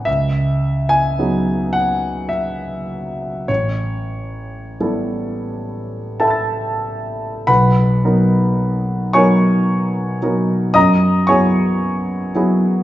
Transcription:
grand piano
0.05 C#2 E5
0.89 G#5
1.19 F#3 B3 D#4 G#4
1.73 F#5
2.29 E5
3.48 A1 C#5
4.80 G3 B3 E4 A4
6.20 A4 E5 G5 A5 B5
6.27 E6 A6
7.47 B1 B4 F#5 B5
8.05 F#3 B3 D#4 A#4
9.13 F#3 B3 D#4 A#4 C#5 G#5 C#6
10.22 F#3 B3 D#4 A#4
10.74 F#2 D#5 A#5 D#6
11.27 F#3 B3 E4 G#4 C#5 G#5 C#6
12.35 F#3 B3 E4 G#4

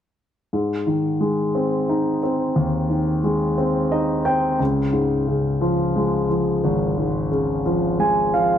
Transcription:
grand piano
0.53 G#2
0.87 D#3
1.20 G#3
1.55 C4
1.89 D#4
2.23 C4
2.56 D#2
2.90 D#3
3.24 G#3
3.58 C4
3.92 D#4 D#5
4.25 C4 G5
4.59 C#2
4.93 G#2
5.27 C#3
5.61 F3
5.96 G#3
6.30 F3
6.64 G#1
6.98 G#2
7.31 C#3
7.66 F3
7.99 G#3 G#5
8.34 F3 F5

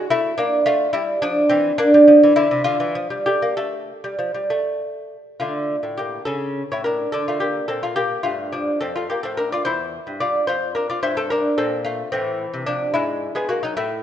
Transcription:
lute
0.10 A3 E4
0.38 A#3 D4
0.66 A3 F4
0.93 G3 E4
1.22 F3 D4
1.49 E3 C4
1.78 A#3 D4
1.94 G3
2.08 F3
2.23 E3
2.36 D3 E4
2.51 C3
2.64 D3 F4
2.80 E3
2.95 F3
3.10 G3
3.26 A3 G4
3.42 A#3
3.57 A3 A4
4.04 G3
4.19 F3
4.35 G3
4.50 A3
5.40 D3 A3 F4
5.83 A2
5.97 A#3 G4
6.25 C#3 C#4 A4
6.72 A2 E4 C#5
6.84 D4 A#4
7.12 D3 D4 A4
7.28 A3 F4
7.40 A#3 G4
7.68 A#2 C4 A4
7.83 A3 F4
7.96 A#3 G4
8.23 G2 A3 F4
8.52 F3 D4
8.81 F2 C4 A4
8.96 A3 F4
9.10 A#3 G4
9.23 A2 C4 A4
9.37 D4 A#4
9.52 F4 D5
9.65 E2 E4 C5
10.07 G2
10.20 F4 D5
10.47 F2 F4 C5
10.75 D4 A#4
10.90 F4 D5
11.03 G2 E4 C5
11.17 C4 A4
11.30 D4 A#4
11.58 A#2 C4 A4
11.85 A3 F4
12.12 A2 E3 C4
12.54 C3
12.66 F3 D4
12.94 G#2 G#3 E4
13.35 G#3 B3 G#4
13.49 A#3 F#4
13.63 F#3 D#4
13.77 A2 A3 E4

